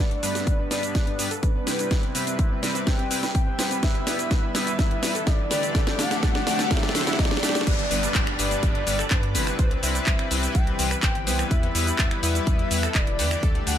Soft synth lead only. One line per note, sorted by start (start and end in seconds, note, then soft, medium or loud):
0.00 0.62 D5 loud
0.71 1.34 D5 loud
1.43 2.06 B4 loud
2.15 2.77 E5 medium
2.87 3.30 G5 medium
3.35 3.78 G5 medium
3.83 4.45 E5 loud
4.55 5.28 E5 loud
5.27 6.00 D5 loud
5.99 6.72 F#5 loud
6.71 7.20 E5 loud
7.19 7.62 D5 medium
7.67 8.29 D5 loud
8.39 9.13 D5 loud
9.11 9.74 B4 loud
9.83 10.56 E5 loud
10.55 10.98 G5 loud
11.03 11.46 G5 medium
11.51 12.13 E5 loud
12.23 12.96 E5 loud
12.95 13.57 D5 loud
13.67 13.78 F#5 loud